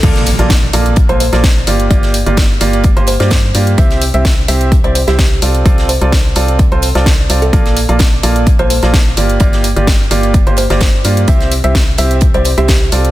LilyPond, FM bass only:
\new Staff \with { instrumentName = "FM bass" } { \clef bass \time 4/4 \key c \mixolydian \tempo 4 = 128 bes,,8. bes,,8. bes,,8. bes,,8 bes,,8. g,,8 | g,,8. g,,8. g,,8. g,,8 g,8. g,8 | c,8. c,8. c,8. c,8 c,8. c,8 | c,8. c,8. c,8. c,8 c,8. c,8 |
bes,,8. bes,,8. bes,,8. bes,,8 bes,,8. g,,8 | r8. g,,8. g,,8. g,,8 g,,8. g,8 | c,8. c,8. c,8. c,8 c,8. c,8 | }